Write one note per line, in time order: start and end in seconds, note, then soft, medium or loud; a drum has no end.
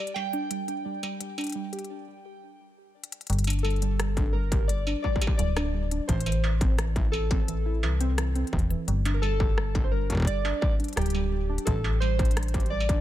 0.00 0.13 D5 loud
0.07 closed hi-hat soft
0.14 0.27 G3 medium
0.14 2.55 G5 loud
0.14 struck metal medium
0.33 0.44 D4 loud
0.33 closed hi-hat soft
0.51 0.62 G3 medium
0.51 closed hi-hat medium
0.68 0.75 D4 medium
0.68 closed hi-hat soft
0.85 1.02 G3 medium
1.03 1.19 G3 loud
1.03 closed hi-hat soft
1.03 struck metal medium
1.20 1.31 G3 medium
1.20 closed hi-hat medium
1.38 1.54 D4 medium
1.38 closed hi-hat soft
1.38 struck metal medium
1.41 closed hi-hat soft
1.44 closed hi-hat soft
1.47 closed hi-hat soft
1.49 closed hi-hat soft
1.52 1.62 G3 medium
1.52 closed hi-hat soft
1.73 1.84 G4 medium
1.73 closed hi-hat soft
1.79 closed hi-hat soft
1.84 closed hi-hat soft
3.04 closed hi-hat medium
3.12 closed hi-hat medium
3.21 closed hi-hat soft
3.27 4.95 G1 loud
3.27 closed hi-hat soft
3.30 3.41 G3 medium
3.30 closed hi-hat medium
3.33 closed hi-hat medium
3.39 closed hi-hat medium
3.44 3.54 D4 medium
3.44 closed hi-hat medium
3.47 closed hi-hat soft
3.47 struck metal medium
3.50 closed hi-hat medium
3.53 closed hi-hat soft
3.59 closed hi-hat soft
3.63 3.81 G3 medium
3.63 4.36 A4 medium
3.63 closed hi-hat soft
3.63 struck metal medium
3.70 closed hi-hat soft
3.76 closed hi-hat soft
3.82 3.99 G3 loud
3.82 closed hi-hat medium
4.00 4.11 G3 medium
4.00 cross-stick loud
4.00 closed hi-hat medium
4.17 4.33 D4 medium
4.17 kick loud
4.17 closed hi-hat soft
4.33 4.41 G3 medium
4.33 4.69 A#4 loud
4.52 4.63 G4 medium
4.52 kick loud
4.52 closed hi-hat medium
4.68 4.86 G3 medium
4.68 5.01 D5 loud
4.68 closed hi-hat medium
4.87 4.98 D4 medium
4.87 struck metal medium
5.02 5.15 G3 medium
5.02 5.36 D5 loud
5.02 kick soft
5.16 kick medium
5.22 5.33 G4 medium
5.22 closed hi-hat medium
5.22 struck metal medium
5.27 kick medium
5.37 6.00 D1 loud
5.37 5.50 G3 loud
5.37 6.04 D5 loud
5.37 closed hi-hat medium
5.57 5.68 D4 loud
5.57 cross-stick loud
5.57 closed hi-hat soft
5.57 struck metal medium
5.74 5.85 G3 medium
5.91 5.98 D4 medium
5.91 closed hi-hat medium
6.08 7.85 A1 medium
6.08 6.25 E3 medium
6.08 6.74 C5 medium
6.08 kick medium
6.08 closed hi-hat medium
6.20 closed hi-hat medium
6.26 6.42 E3 loud
6.26 closed hi-hat soft
6.26 struck metal medium
6.32 closed hi-hat soft
6.44 6.55 E3 medium
6.44 struck metal medium
6.61 6.78 C4 medium
6.61 kick loud
6.61 closed hi-hat medium
6.78 6.85 E3 medium
6.78 cross-stick loud
6.78 closed hi-hat medium
6.96 7.07 E4 medium
6.96 kick loud
6.96 closed hi-hat soft
7.12 7.30 E3 medium
7.12 8.48 A4 loud
7.12 struck metal medium
7.31 7.42 C4 medium
7.31 kick loud
7.31 closed hi-hat medium
7.48 7.59 E3 medium
7.48 closed hi-hat medium
7.66 7.77 E4 medium
7.83 8.44 C2 loud
7.83 7.94 E3 loud
7.83 struck metal medium
8.01 8.12 C4 loud
8.01 closed hi-hat medium
8.18 8.29 E3 medium
8.18 cross-stick loud
8.18 closed hi-hat medium
8.35 8.42 C4 medium
8.35 closed hi-hat soft
8.47 closed hi-hat soft
8.53 8.76 E1 medium
8.53 8.69 E3 medium
8.53 kick medium
8.59 closed hi-hat soft
8.70 8.87 E3 loud
8.70 closed hi-hat medium
8.88 10.53 G1 medium
8.88 8.99 G3 medium
8.88 closed hi-hat medium
9.05 9.22 D4 medium
9.05 closed hi-hat soft
9.05 struck metal medium
9.14 9.22 A#4 medium
9.22 9.29 G3 medium
9.22 9.87 A4 loud
9.22 struck metal medium
9.40 9.51 G4 medium
9.40 kick loud
9.58 9.74 G3 medium
9.58 cross-stick loud
9.75 9.86 D4 medium
9.75 kick loud
9.75 closed hi-hat soft
9.84 9.92 C5 medium
9.92 10.03 G3 medium
9.92 10.24 A#4 loud
10.10 10.21 G4 medium
10.10 kick medium
10.10 closed hi-hat medium
10.12 kick medium
10.15 kick medium
10.17 kick medium
10.20 kick medium
10.22 kick loud
10.25 10.38 G3 loud
10.25 10.60 D5 loud
10.25 kick loud
10.25 closed hi-hat medium
10.45 10.56 D4 loud
10.45 struck metal medium
10.61 10.73 G3 medium
10.61 10.75 D5 loud
10.61 kick loud
10.80 10.86 D4 medium
10.80 closed hi-hat soft
10.84 closed hi-hat soft
10.88 closed hi-hat soft
10.93 11.68 G4 medium
10.93 closed hi-hat soft
10.97 11.58 D1 loud
10.97 11.13 G3 medium
10.97 cross-stick loud
10.97 closed hi-hat medium
11.01 closed hi-hat soft
11.06 closed hi-hat soft
11.10 closed hi-hat soft
11.14 11.31 G3 loud
11.14 struck metal soft
11.32 11.43 G3 medium
11.49 11.66 D4 medium
11.58 closed hi-hat medium
11.65 13.01 A1 loud
11.65 11.74 G3 medium
11.65 11.99 A4 loud
11.65 kick medium
11.65 closed hi-hat medium
11.84 11.95 G4 medium
11.84 struck metal medium
12.00 12.18 G3 medium
12.00 12.73 C5 loud
12.00 struck metal medium
12.19 12.30 D4 medium
12.19 kick loud
12.19 closed hi-hat soft
12.25 closed hi-hat soft
12.31 closed hi-hat soft
12.37 12.48 G3 medium
12.37 cross-stick loud
12.37 closed hi-hat medium
12.43 closed hi-hat medium
12.48 closed hi-hat soft
12.54 12.65 G4 medium
12.54 kick loud
12.54 closed hi-hat soft
12.60 closed hi-hat soft
12.66 closed hi-hat soft
12.70 12.83 G3 loud
12.70 13.01 D5 loud
12.80 struck metal medium
12.89 13.00 D4 loud
12.89 kick loud
12.89 closed hi-hat medium